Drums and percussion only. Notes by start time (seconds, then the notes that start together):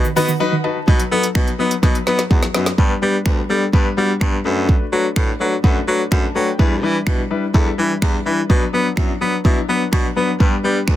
0.05 shaker
0.17 open hi-hat, shaker
0.28 shaker
0.88 kick
0.99 closed hi-hat
1.23 closed hi-hat
1.35 finger snap, kick
1.47 closed hi-hat
1.71 closed hi-hat
1.83 kick, snare
1.95 closed hi-hat
2.07 snare
2.19 snare, closed hi-hat
2.31 kick
2.42 snare, closed hi-hat
2.54 snare
2.66 snare, closed hi-hat
2.78 kick
3.26 finger snap, kick
3.73 kick
4.21 finger snap, kick
4.69 kick
5.16 finger snap, kick
5.64 kick
6.12 finger snap, kick
6.59 kick
7.07 finger snap, kick
7.54 kick
8.02 finger snap, kick
8.50 kick
8.97 finger snap, kick
9.45 kick
9.93 finger snap, kick
10.40 kick
10.88 finger snap, kick